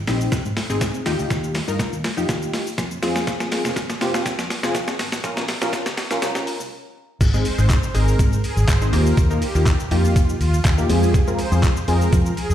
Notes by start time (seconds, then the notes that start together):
0.07 A#1 C4 D#4 G4, snare, open hi-hat, shaker
0.21 shaker
0.32 kick, snare, closed hi-hat, shaker
0.45 G#2, shaker
0.57 snare, open hi-hat, shaker
0.70 G#1 C4 D#4 G#4, shaker
0.81 G#2, kick, snare, closed hi-hat, shaker
0.94 shaker
1.06 D#2 D#4 F4 G4, snare, open hi-hat, shaker
1.19 D2, shaker
1.30 D#2, kick, snare, closed hi-hat, shaker
1.44 shaker
1.55 snare, open hi-hat, shaker
1.68 G2 D#4 F4 A#4, shaker
1.79 kick, snare, closed hi-hat, shaker
1.93 D#2, shaker
2.04 snare, open hi-hat, shaker
2.17 F2 D#4 F4 G4, shaker
2.29 D#2, kick, snare, closed hi-hat, shaker
2.42 shaker
2.53 snare, open hi-hat, shaker
2.67 shaker
2.78 F2, kick, snare, closed hi-hat, shaker
2.91 shaker
3.02 F2 C4 F4 G#4, snare, open hi-hat, shaker
3.16 snare, shaker
3.27 kick, snare, closed hi-hat, shaker
3.40 snare, shaker
3.52 snare, open hi-hat, shaker
3.65 F1, snare, shaker
3.76 kick, snare, closed hi-hat, shaker
3.90 snare, shaker
4.01 F1 C4 F4 G4, snare, open hi-hat, shaker
4.14 snare, shaker
4.26 muted fingered electric bass stroke, kick, snare, closed hi-hat, shaker
4.38 F2, snare, shaker
4.50 snare, open hi-hat, shaker
4.63 F1 C4 F4 G#4, snare, shaker
4.75 F2, kick, snare, closed hi-hat, shaker
4.87 snare, shaker
4.99 G#1, snare, open hi-hat, shaker
5.12 A1, snare, shaker
5.24 A#1 C#4 F4 A#4, kick, snare, closed hi-hat, shaker
5.37 snare, shaker
5.48 snare, open hi-hat, shaker
5.61 A#1 C#4 F4 A#4, snare, shaker
5.73 kick, snare, closed hi-hat, shaker
5.86 C#2, snare, shaker
5.97 snare, open hi-hat, shaker
6.11 A#1 C#4 F4 A#4, snare, shaker
6.22 C2, snare, closed hi-hat, shaker
6.35 A#1, snare, shaker
6.47 open hi-hat, shaker
6.60 C2, shaker
7.21 G#1 D#4 G#4, kick, closed hi-hat, crash, shaker
7.34 G#3 C4 D#4 G#4, shaker
7.45 open hi-hat, shaker
7.58 G#1 G#3 C4 D#4 G#4, shaker
7.70 kick, clap, closed hi-hat, shaker
7.83 shaker
7.94 G#1 G#3 C4 D#4 G#4, open hi-hat, shaker
8.08 shaker
8.19 G#2, kick, closed hi-hat, shaker
8.33 shaker
8.44 open hi-hat, shaker
8.57 G#1, shaker
8.68 G#1, kick, clap, closed hi-hat, shaker
8.81 G#3 C4 D#4 G#4, shaker
8.93 D#2 A#3 D#4 F4 G4, open hi-hat, shaker
9.06 shaker
9.17 D#2, kick, closed hi-hat, shaker
9.30 A#3 D#4 F4 A#4, shaker
9.42 open hi-hat, shaker
9.55 D#2 A#3 D#4 F4 G4, shaker
9.66 kick, clap, closed hi-hat, shaker
9.80 shaker
9.91 F2 A#3 D#4 F4 G4, open hi-hat, shaker
10.05 shaker
10.16 kick, closed hi-hat, shaker
10.29 shaker
10.40 D#2, open hi-hat, shaker
10.54 shaker
10.65 D#2, kick, clap, closed hi-hat, shaker
10.78 A#3 D#4 F4 G4, shaker
10.89 F2 G#3 C4 F4 G#4, open hi-hat, shaker
11.03 shaker
11.14 kick, closed hi-hat, shaker
11.27 G#3 C4 F4 A#4, shaker
11.39 open hi-hat, shaker
11.52 F2 G#3 C4 F4 G#4, shaker
11.63 kick, clap, closed hi-hat, shaker
11.76 shaker
11.88 F2 G#3 C4 F4 G#4, open hi-hat, shaker
12.01 shaker
12.13 F3, kick, closed hi-hat, shaker
12.26 shaker
12.37 open hi-hat, shaker
12.50 F2, shaker